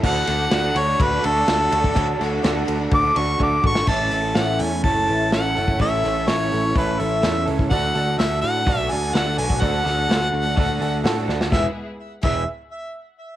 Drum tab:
CC |x---------------|----------------|x---------------|----------------|
RD |--x-x-x-x-x-x-x-|x-x-x-x-x-x-----|----------------|----------------|
HH |----------------|----------------|--o-o-o-o-o-o-o-|o-o-o-o-o-o-o-o-|
SD |--o-o-------o---|--o-o----------o|----o-------o---|--o-o-------o---|
BD |o-------o------o|o-------o---o-o-|o-------o------o|o-------o------o|

CC |----------------|----------------|------x---------|
RD |----------------|----------------|----------------|
HH |o-o-o-o-o-o-o-o-|o-o-o-o-o-o-o---|----------------|
SD |----o-------o---|--o-o-------o-oo|o---------------|
BD |o-------o------o|o-------o-------|o-----o---------|